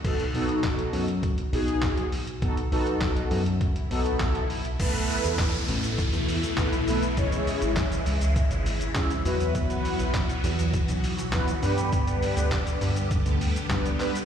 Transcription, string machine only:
\new Staff \with { instrumentName = "String machine" } { \clef bass \time 4/4 \key b \mixolydian \tempo 4 = 101 << { r1 | r1 | <e e'>1~ | <e e'>2.~ <e e'>8 <fis fis'>8~ |
<fis fis'>2.~ <fis fis'>8 <g g'>8~ | <g g'>1 | } \\ { r1 | r1 | <b, a>1 | <cis gis>2.~ <cis gis>8 <e b>8~ |
<e b>2.~ <e b>8 <d b>8~ | <d b>1 | } >> }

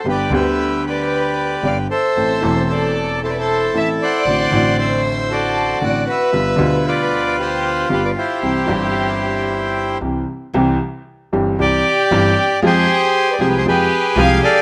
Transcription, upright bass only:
\new Staff \with { instrumentName = "Upright bass" } { \clef bass \time 4/4 \key c \major \tempo 4 = 115 g,,8 d,2~ d,8 g,,8 r8 | a,,8 e,,2~ e,,8 a,,8 r8 | a,,8 a,,2~ a,,8 a,,8 r8 | g,,8 d,2~ d,8 g,,8 r8 |
c,8 g,,2~ g,,8 c,8 r8 | c,8 r4 g,,8 c,8 r8 g,,8 r8 | f,8 r4 c,8 f,8 r8 c,8 r8 | }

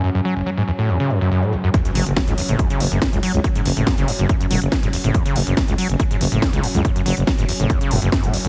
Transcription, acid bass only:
\new Staff \with { instrumentName = "Acid bass" } { \clef bass \time 4/4 \key fis \minor \tempo 4 = 141 fis,16 fis,16 fis16 fis,,16 fis16 gis,16 e,16 a,16 e,16 cis16 fis,16 fis,16 fis,16 a,16 fis,,16 fis,16 | r16 fis,16 fis16 fis,,16 fis16 gis,16 e,16 a,16 e,16 cis16 fis,16 fis,16 r16 fis,16 fis16 fis,,16 | fis16 gis,16 e,16 a,16 e,16 cis16 fis,16 fis,16 r16 fis,16 fis16 fis,,16 fis16 gis,16 e,16 a,16 | e,16 cis16 fis,16 fis,16 r16 fis,16 fis16 fis,,16 fis16 gis,16 e,16 a,16 e,16 cis16 fis,16 fis,16 |
r16 fis,16 fis16 fis,,16 fis16 gis,16 e,16 a,16 e,16 cis16 fis,16 fis,16 r16 a,16 fis,,16 fis,16 | }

